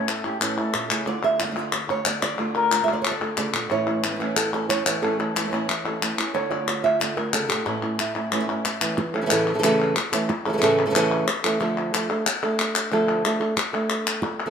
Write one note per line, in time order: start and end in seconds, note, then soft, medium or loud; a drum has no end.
0.00 0.74 A2 medium
0.00 0.77 A3 medium
0.00 0.57 A4 medium
0.00 0.11 C#5 medium
0.07 0.24 C#4 medium
0.07 0.26 A4 medium
0.07 muted nylon-string guitar stroke soft
0.07 clap medium
0.24 0.40 A3 soft
0.24 0.40 C#4 soft
0.24 0.41 C#4 soft
0.24 0.40 E4 soft
0.24 0.40 G4 medium
0.24 clap soft
0.40 0.56 A2 medium
0.40 0.57 E3 medium
0.40 0.57 A3 medium
0.40 0.57 C#4 medium
0.40 1.05 C#4 soft
0.40 0.56 E4 medium
0.40 0.56 A4 medium
0.40 clap medium
0.57 0.73 A3 soft
0.57 0.73 C#4 soft
0.57 0.73 E4 soft
0.57 1.05 E4 medium
0.57 0.96 A4 medium
0.57 clap soft
0.73 0.91 A#2 medium
0.73 muted nylon-string guitar stroke medium
0.73 clap medium
0.90 1.07 C#3 medium
0.90 1.05 A3 soft
0.90 1.06 C#4 soft
0.90 1.06 E4 soft
0.90 clap medium
1.06 1.39 D3 medium
1.06 2.37 D3 medium
1.06 1.39 A3 medium
1.06 1.39 D4 medium
1.06 1.38 F4 medium
1.06 1.24 D5 loud
1.06 clap soft
1.23 1.42 E5 loud
1.23 clap medium
1.39 1.45 D3 soft
1.39 1.46 A3 soft
1.39 1.42 D4 soft
1.39 1.46 D4 soft
1.39 1.42 F4 medium
1.39 1.59 F5 loud
1.39 clap medium
1.43 1.50 D3 medium
1.43 1.50 A3 medium
1.43 1.46 F4 soft
1.47 1.54 D3 medium
1.47 1.51 D4 medium
1.47 1.51 F4 medium
1.52 1.55 A3 medium
1.52 1.55 D4 medium
1.52 1.55 F4 medium
1.56 1.71 D3 medium
1.56 1.71 A3 medium
1.56 1.72 D4 medium
1.56 1.72 F4 medium
1.56 1.74 E5 loud
1.56 clap soft
1.72 1.90 D5 medium
1.72 muted nylon-string guitar stroke medium
1.72 clap medium
1.88 2.04 A3 soft
1.88 2.05 D4 soft
1.88 2.05 F4 soft
1.88 2.06 C#5 medium
1.88 clap medium
2.05 2.37 D3 soft
2.05 2.37 A3 soft
2.05 2.38 D4 soft
2.05 2.39 F4 medium
2.05 2.21 D5 medium
2.05 clap medium
2.22 2.37 D4 medium
2.22 2.83 D5 loud
2.22 clap medium
2.38 2.71 D3 medium
2.38 3.53 D3 medium
2.38 2.71 A3 medium
2.38 2.71 D4 medium
2.38 2.70 F4 medium
2.38 clap soft
2.54 3.69 F4 soft
2.54 3.01 A#4 loud
2.71 2.78 A3 soft
2.71 2.78 D4 soft
2.71 2.78 F4 soft
2.71 clap medium
2.79 2.82 D3 soft
2.79 2.82 A3 soft
2.79 2.83 D4 soft
2.79 2.83 F4 soft
2.83 2.86 D3 medium
2.83 2.87 A3 medium
2.83 2.87 D4 medium
2.83 2.87 F4 medium
2.83 2.93 E5 medium
2.87 3.03 D3 medium
2.87 3.03 A3 medium
2.87 3.03 D4 medium
2.87 3.04 F4 medium
2.87 clap soft
2.93 3.01 D5 medium
3.02 3.28 A4 medium
3.02 3.11 C#5 medium
3.02 muted nylon-string guitar stroke medium
3.02 clap medium
3.11 3.37 D5 medium
3.20 3.37 A3 soft
3.20 3.37 D4 soft
3.20 3.37 F4 soft
3.20 3.72 A4 soft
3.20 clap soft
3.37 3.54 C#3 medium
3.37 3.70 D3 soft
3.37 3.70 A3 soft
3.37 3.70 D4 soft
3.37 3.71 F4 medium
3.37 3.71 D5 medium
3.37 clap medium
3.53 3.69 A#2 medium
3.53 clap medium
3.70 3.86 A2 medium
3.70 5.00 A2 medium
3.70 3.86 E3 medium
3.70 4.85 E3 medium
3.70 3.87 A3 medium
3.70 3.86 C#4 medium
3.70 5.01 C#4 medium
3.70 3.85 E4 medium
3.70 5.01 E4 medium
3.70 4.36 C#5 medium
3.70 clap medium
3.87 4.04 A3 soft
3.87 4.03 C#4 soft
3.87 4.02 E4 soft
4.03 4.10 E3 soft
4.03 4.06 A3 soft
4.03 4.10 A3 soft
4.03 4.06 C#4 soft
4.03 4.10 C#4 soft
4.03 4.06 E4 soft
4.03 clap medium
4.08 4.14 E3 soft
4.08 4.15 A3 soft
4.08 4.11 E4 soft
4.12 4.19 E3 medium
4.12 4.15 C#4 soft
4.12 4.15 E4 medium
4.16 4.19 A3 medium
4.16 4.20 C#4 medium
4.16 4.20 E4 medium
4.20 4.35 A2 medium
4.20 4.35 E3 medium
4.20 4.35 A3 medium
4.20 4.36 C#4 medium
4.20 4.36 E4 medium
4.20 clap soft
4.36 4.53 A4 medium
4.36 muted nylon-string guitar stroke medium
4.36 clap medium
4.53 4.69 A3 soft
4.53 4.69 C#4 soft
4.53 4.69 E4 soft
4.53 4.69 A4 medium
4.53 clap medium
4.69 4.85 E3 soft
4.69 4.86 A3 soft
4.69 4.86 C#4 soft
4.69 4.84 E4 soft
4.69 4.85 C#5 medium
4.69 clap medium
4.86 6.17 E3 medium
4.86 5.02 A3 soft
4.86 5.02 C#4 soft
4.86 5.02 E4 soft
4.86 5.35 C#5 medium
4.86 clap medium
5.02 5.18 A2 medium
5.02 5.19 E3 medium
5.02 7.20 A3 medium
5.02 5.19 A3 medium
5.02 5.19 C#4 medium
5.02 5.18 E4 medium
5.02 5.18 A4 medium
5.02 clap medium
5.19 5.36 A3 soft
5.19 5.35 C#4 soft
5.19 5.34 E4 soft
5.19 5.35 A4 medium
5.19 clap soft
5.35 5.42 A3 soft
5.35 5.42 C#4 soft
5.35 5.42 E4 medium
5.35 5.85 C#5 medium
5.35 clap medium
5.43 5.46 E3 soft
5.43 5.46 A3 soft
5.43 5.47 C#4 soft
5.43 5.47 E4 soft
5.47 5.51 E3 medium
5.47 5.51 A3 medium
5.47 5.51 C#4 medium
5.47 5.52 E4 medium
5.51 5.67 A2 medium
5.51 5.67 E3 medium
5.51 5.67 A3 medium
5.51 5.68 C#4 medium
5.51 5.68 E4 medium
5.51 5.69 D5 medium
5.51 clap medium
5.68 6.35 E5 medium
5.68 muted nylon-string guitar stroke medium
5.68 clap medium
5.84 6.01 A3 soft
5.84 6.01 C#4 soft
5.84 6.00 E4 soft
5.84 6.34 A4 soft
5.84 clap medium
6.01 6.17 E3 soft
6.01 6.17 A3 soft
6.01 6.17 C#4 soft
6.01 6.16 E4 medium
6.01 clap medium
6.17 6.34 A3 soft
6.17 6.32 C#4 medium
6.17 6.34 C#4 soft
6.17 6.34 E4 soft
6.17 clap medium
6.34 7.49 D3 medium
6.34 6.50 D3 medium
6.34 6.50 A3 medium
6.34 6.50 D4 medium
6.34 6.50 F4 medium
6.34 6.84 C#5 loud
6.34 clap medium
6.51 6.67 A3 soft
6.51 6.67 D4 soft
6.51 6.67 F4 soft
6.51 6.83 D5 medium
6.68 7.48 F4 medium
6.68 muted nylon-string guitar stroke medium
6.68 clap medium
6.84 7.00 A3 soft
6.84 7.00 D4 soft
6.84 7.00 F4 soft
6.84 7.00 E5 loud
6.84 clap soft
7.00 7.16 D3 medium
7.00 7.16 A3 medium
7.00 7.17 D4 medium
7.00 7.15 F4 medium
7.00 7.49 D5 loud
7.00 clap medium
7.17 7.33 A3 soft
7.17 7.33 D4 soft
7.17 7.33 F4 soft
7.17 7.33 A#4 medium
7.17 clap medium
7.33 7.50 C#3 medium
7.33 7.64 A4 medium
7.33 muted nylon-string guitar stroke medium
7.33 clap medium
7.49 7.65 A#2 medium
7.49 7.65 A3 soft
7.49 7.66 D4 soft
7.49 7.65 F4 soft
7.49 7.66 G4 medium
7.49 clap medium
7.66 7.82 A2 medium
7.66 8.96 A2 medium
7.66 7.82 E3 medium
7.66 7.82 A3 medium
7.66 7.82 C#4 medium
7.66 7.81 E4 medium
7.66 8.98 A4 medium
7.66 clap medium
7.82 7.98 A3 soft
7.82 7.98 C#4 soft
7.82 7.98 E4 soft
7.82 clap soft
7.99 8.15 E4 medium
7.99 muted nylon-string guitar stroke medium
7.99 clap medium
8.15 8.31 A3 soft
8.15 8.32 C#4 soft
8.15 8.31 E4 soft
8.15 clap medium
8.31 8.48 A2 medium
8.31 8.48 E3 medium
8.31 8.48 A3 medium
8.31 8.40 C#4 soft
8.31 8.48 C#4 medium
8.31 8.47 E4 medium
8.31 clap medium
8.40 8.48 E4 soft
8.48 8.64 A3 soft
8.48 8.64 C#4 soft
8.48 8.64 E4 soft
8.48 8.96 E4 soft
8.48 clap soft
8.65 8.96 C#4 soft
8.65 muted nylon-string guitar stroke medium
8.65 clap medium
8.81 9.14 E3 medium
8.81 8.98 A3 soft
8.81 8.98 C#4 soft
8.81 8.97 E4 soft
8.81 clap medium
8.98 muted nylon-string guitar stroke medium
8.98 clap soft
9.14 9.21 E3 soft
9.14 9.21 A3 medium
9.14 9.21 C#4 medium
9.14 9.21 A4 medium
9.14 clap medium
9.21 9.25 C#3 medium
9.21 9.25 E3 medium
9.21 9.25 A3 medium
9.21 9.26 C#4 medium
9.21 9.26 A4 medium
9.26 9.30 C#3 medium
9.26 9.30 E3 medium
9.26 9.30 A3 medium
9.26 9.30 C#4 medium
9.26 9.30 A4 medium
9.31 9.62 A2 medium
9.31 9.53 C#3 loud
9.31 9.53 E3 medium
9.31 9.54 A3 medium
9.31 9.54 C#4 medium
9.31 9.54 A4 loud
9.31 clap medium
9.47 clap medium
9.54 9.57 C#3 medium
9.54 9.58 E3 medium
9.54 9.58 A3 medium
9.54 9.58 C#4 medium
9.54 9.58 A4 medium
9.59 9.62 C#3 medium
9.59 9.63 E3 medium
9.59 9.63 A3 medium
9.59 9.63 C#4 medium
9.59 9.63 A4 loud
9.63 9.95 A2 loud
9.63 9.95 C#3 loud
9.63 9.95 E3 loud
9.63 9.96 A3 loud
9.63 9.96 C#4 loud
9.63 9.96 A4 loud
9.63 clap medium
9.80 clap medium
9.96 muted nylon-string guitar stroke medium
9.96 clap medium
10.12 10.29 E3 soft
10.12 10.29 A3 medium
10.12 10.29 C#4 medium
10.12 10.28 A4 medium
10.12 clap medium
10.29 muted nylon-string guitar stroke medium
10.29 clap medium
10.46 10.52 C#3 medium
10.46 10.49 E3 medium
10.46 10.49 A3 medium
10.46 10.48 C#4 medium
10.46 10.48 A4 medium
10.46 10.53 A4 medium
10.53 10.56 C#3 medium
10.53 10.57 E3 medium
10.53 10.57 A3 medium
10.53 10.57 C#4 medium
10.53 10.57 A4 medium
10.58 10.61 C#3 medium
10.58 10.61 E3 medium
10.58 10.62 A3 medium
10.58 10.62 C#4 medium
10.58 10.62 A4 medium
10.62 10.94 A2 medium
10.62 10.85 C#3 loud
10.62 10.85 E3 medium
10.62 10.85 A3 loud
10.62 10.85 C#4 loud
10.62 10.86 A4 loud
10.62 clap medium
10.79 clap medium
10.86 10.89 C#3 medium
10.86 10.89 E3 medium
10.86 10.90 A3 medium
10.86 10.90 C#4 medium
10.86 10.90 A4 medium
10.90 10.94 C#3 medium
10.90 10.94 E3 medium
10.90 10.94 A3 medium
10.90 10.94 C#4 medium
10.90 10.95 A4 medium
10.95 11.26 A2 medium
10.95 11.27 C#3 loud
10.95 11.27 E3 medium
10.95 11.27 A3 loud
10.95 11.27 C#4 loud
10.95 11.27 A4 loud
10.95 clap medium
11.12 clap medium
11.27 muted nylon-string guitar stroke medium
11.27 clap loud
11.44 11.60 E3 medium
11.44 11.60 A3 medium
11.44 11.60 C#4 medium
11.44 11.60 A4 medium
11.44 clap medium
11.60 11.93 D3 medium
11.60 11.92 F3 medium
11.60 11.93 A3 loud
11.60 11.93 D4 medium
11.60 11.93 A4 medium
11.60 clap medium
11.93 12.09 F3 medium
11.93 12.09 A3 medium
11.93 12.09 D4 medium
11.93 12.08 A4 medium
11.93 clap medium
12.10 12.25 A3 soft
12.10 12.26 D4 medium
12.10 12.26 A4 medium
12.10 clap medium
12.26 muted nylon-string guitar stroke medium
12.26 clap medium
12.43 12.92 A3 medium
12.43 12.92 D4 medium
12.43 12.93 A4 medium
12.43 clap medium
12.59 clap medium
12.75 clap medium
12.91 13.24 D3 medium
12.91 13.23 F3 medium
12.91 13.24 A3 medium
12.91 13.24 D4 medium
12.91 13.25 A4 loud
12.91 clap medium
13.24 13.40 F3 medium
13.24 13.40 A3 medium
13.24 13.40 D4 medium
13.24 13.39 A4 medium
13.24 clap medium
13.40 13.56 A3 soft
13.40 13.56 D4 medium
13.40 13.56 A4 medium
13.40 clap soft
13.56 muted nylon-string guitar stroke medium
13.56 clap medium
13.73 14.46 A3 soft
13.73 14.22 D4 medium
13.73 14.47 A4 medium
13.73 clap medium
13.90 clap medium
14.07 clap medium
14.22 muted nylon-string guitar stroke medium
14.22 clap medium
14.46 14.49 C#3 medium
14.46 14.49 E3 medium
14.46 14.50 A3 medium
14.46 14.50 C#4 medium
14.46 14.50 A4 medium